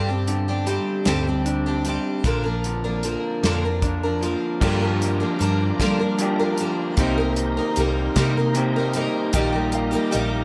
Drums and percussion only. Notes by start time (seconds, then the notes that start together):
0.27 closed hi-hat
0.67 closed hi-hat
1.05 snare, closed hi-hat
1.46 closed hi-hat
1.85 closed hi-hat
2.24 kick, closed hi-hat
2.64 closed hi-hat
3.03 closed hi-hat
3.44 snare, closed hi-hat
3.82 kick, closed hi-hat
4.23 closed hi-hat
4.61 kick, crash
5.02 closed hi-hat
5.41 closed hi-hat
5.80 kick, snare, closed hi-hat
6.19 closed hi-hat
6.58 closed hi-hat
6.97 kick, closed hi-hat
7.36 closed hi-hat
7.76 closed hi-hat
8.16 kick, snare, closed hi-hat
8.55 closed hi-hat
8.94 closed hi-hat
9.33 kick, closed hi-hat, shaker
9.72 closed hi-hat
9.92 shaker
10.12 closed hi-hat